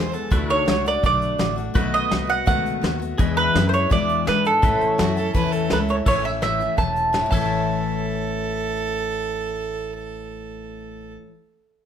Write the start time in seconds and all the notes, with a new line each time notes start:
Already playing: E2 E3 G#3 B3 G#4 C5 E5
0.00 G#4
0.12 E3 G#3 B3 G#4 A4, closed hi-hat
0.31 D2 D3 A3 D4 E4 F#4 B4, kick, closed hi-hat
0.50 C#5, closed hi-hat
0.57 D4 A4
0.66 C#2 D3 A3 D4 F#4, snare, closed hi-hat
0.85 A3 D4 F#4 D5, closed hi-hat
1.03 B1 D3 A3 D4 F#4 D5, kick, closed hi-hat
1.22 closed hi-hat
1.38 A1 D3 A3 D4 F#4, snare, closed hi-hat
1.56 A3 D4 F#4, closed hi-hat
1.74 B1 B2 D#3 A3 B3 F#4 B4 D#5, kick, closed hi-hat
1.94 D#5, closed hi-hat
2.10 C2 D#3 A3 B3 F#4, snare, closed hi-hat
2.27 A3 B3 F#4 F#5, closed hi-hat
2.46 C#2 B2 D#3 A3 B3 F#4 F#5, kick, closed hi-hat
2.66 closed hi-hat
2.81 D#2 D#3 A3 B3 F#4, snare, closed hi-hat
3.00 A3 B3 F#4, closed hi-hat
3.18 E2 B2 E3 G#3 D4 E4 G#4 B4 D#5, kick, closed hi-hat
3.37 B4 E5, closed hi-hat
3.54 F#2 E3 G#3 D4 E4, snare, closed hi-hat
3.69 D4 E4 C5
3.73 E3 G#3 C#5, closed hi-hat
3.90 E2 B2 E3 G#3 D4 E4 D5, kick, closed hi-hat
4.09 closed hi-hat
4.26 G#2 E3 G#3 D4 E4 B4, snare, closed hi-hat
4.44 E3 G#3 D4 E4 A4, closed hi-hat
4.62 A2 E3 A3 C#4 E4 A4 B4 E5, kick, closed hi-hat
4.81 muted upright bass stroke, closed hi-hat
4.89 C#5
4.98 F#2 E3 A3 C#4 E4 F#4, snare, closed hi-hat
5.16 A3 C#4 E4 A4, closed hi-hat
5.34 E2 A2 E3 A3 C#4 E4 B4, kick, closed hi-hat
5.52 A4, closed hi-hat
5.70 C#2 E3 A3 C#4 E4 B4, snare, closed hi-hat
5.88 C#5, closed hi-hat
6.06 A1 A2 E3 A3 C#4 E4 A4 C#5 E5, kick, crash
6.24 A3 C#4 E4 E5
6.42 A2 E3 A3 C#4 E4 E5, snare, closed hi-hat
6.59 A3 C#4 E4, closed hi-hat
6.77 E1 E3 A3 C#4 E4 A5, kick, closed hi-hat
6.96 closed hi-hat
7.13 A2 E3 A3 C#4 E4, snare, closed hi-hat
7.26 A2
7.31 A1 E3 A4 C#5 A5, kick, crash
7.35 A3 E5
7.41 C#4
7.46 E4